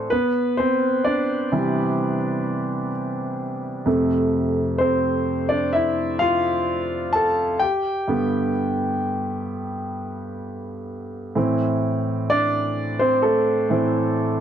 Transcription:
grand piano
Already playing: A3 C4 A4
0.10 B3 B4
0.57 C4 C5
1.04 D4 D5
1.52 C3 E3 G3
3.86 F2 C3 A3
4.78 C4 C5
5.49 D4 D5
5.73 E4 E5
6.19 F4 F5
7.13 A4 A5
7.59 G4 G5
8.08 G2 D3 B3
11.35 A2 E3 C4
12.30 D4 D5
12.99 C4 C5
13.22 A3 A4
13.70 A2 E3 C4

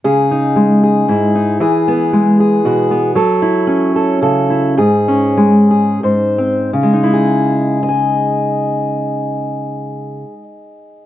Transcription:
steel-string acoustic guitar
0.04 C#3 G#4
0.31 D#4
0.56 G#3
0.83 G#4
1.08 G#2 E4
1.35 D#4
1.60 E3 G#4
1.88 B3
2.13 G#3
2.40 G#4
2.65 B2 F#4
2.91 B3
3.15 F#3 A4
3.42 E4
3.67 C#4
3.96 A4
4.22 C#3 A4
4.50 E4
4.77 G#2 G#4
5.08 C#4
5.37 G#3
5.71 G#4
6.03 G#2 C5
6.38 C4
6.73 C#3
6.83 G#3
6.93 D#4
7.03 E4
7.14 G#4
7.83 D#5
7.89 G#5

